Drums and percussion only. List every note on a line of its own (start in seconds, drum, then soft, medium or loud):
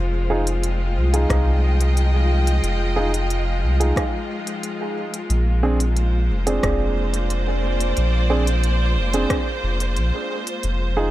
0.47 closed hi-hat soft
0.63 closed hi-hat soft
1.14 closed hi-hat soft
1.30 kick loud
1.30 cross-stick medium
1.30 closed hi-hat soft
1.81 closed hi-hat medium
1.97 closed hi-hat soft
2.47 closed hi-hat medium
2.64 closed hi-hat soft
3.14 closed hi-hat medium
3.30 closed hi-hat soft
3.81 closed hi-hat soft
3.96 kick loud
3.96 cross-stick medium
3.96 closed hi-hat soft
4.47 closed hi-hat medium
4.63 closed hi-hat soft
5.14 closed hi-hat medium
5.30 closed hi-hat soft
5.80 closed hi-hat soft
5.97 closed hi-hat soft
6.47 closed hi-hat soft
6.63 kick loud
6.63 cross-stick medium
6.63 closed hi-hat soft
7.14 closed hi-hat medium
7.30 closed hi-hat soft
7.80 closed hi-hat soft
7.97 closed hi-hat soft
8.47 closed hi-hat soft
8.63 closed hi-hat soft
9.14 closed hi-hat soft
9.30 kick loud
9.30 cross-stick medium
9.30 closed hi-hat soft
9.80 closed hi-hat soft
9.96 closed hi-hat soft
10.47 closed hi-hat soft
10.63 closed hi-hat soft